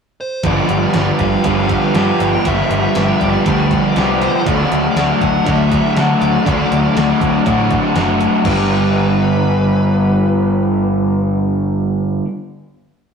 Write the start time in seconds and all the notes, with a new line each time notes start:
0.21 C5
0.43 G1 G2 D3 F3 G3 B3 G4 D5, kick, closed hi-hat
0.69 G1, closed hi-hat
0.94 G1 F3 G3 B3 G4, snare, closed hi-hat
1.19 G1 F5, kick, closed hi-hat
1.44 G1 G2 D3 F3 G3 B3 G4, kick, closed hi-hat
1.69 F3 G3 B3 G4, kick, closed hi-hat
1.83 snare
1.95 G2 F3 G3 B3 G4 F5, snare, closed hi-hat
2.20 G1, closed hi-hat
2.33 G5
2.45 G1 G2 D3 F3 G3 B3 G4 E5, kick, closed hi-hat
2.70 G1, closed hi-hat
2.95 G1 F3 G3 B3 G4, snare, closed hi-hat
3.20 G1 D5, kick, closed hi-hat
3.46 D2 G2 D3 F3 G3 B3 G4 D5, kick, closed hi-hat
3.70 F3 G3 B3 G4, kick, closed hi-hat
3.95 C2 F3 G3 B3 G4, snare, closed hi-hat
4.21 C5, closed hi-hat
4.45 D2 D3 F#3 A3 D4 F#4 D5, kick, closed hi-hat
4.71 D2, closed hi-hat
4.95 D2 F#3 A3 D4 F#4, snare, closed hi-hat
5.21 D2 F#5, kick, closed hi-hat
5.45 D2 D3 F#3 A3 D4 F#4 E5, kick, closed hi-hat
5.70 A3 D4 F#4, kick, closed hi-hat
5.96 D3 F#3 A3 D4 F#4, snare, closed hi-hat
6.21 D2 D5, closed hi-hat
6.45 D2 D3 F#3 A3 D4 F#4, kick, closed hi-hat
6.71 D2, closed hi-hat
6.95 D2 F#3 A3 D4 F#4, snare, closed hi-hat
7.21 D2, kick, closed hi-hat
7.44 A2 D3 F#3 A3 D4 F#4, kick, closed hi-hat
7.70 A3 D4 F#4, kick, closed hi-hat
7.95 F#1 F#3 A3 D4 F#4, snare, closed hi-hat
8.21 closed hi-hat
8.44 G1 G2 D3 G3 B3 D4 G4 B4, kick, crash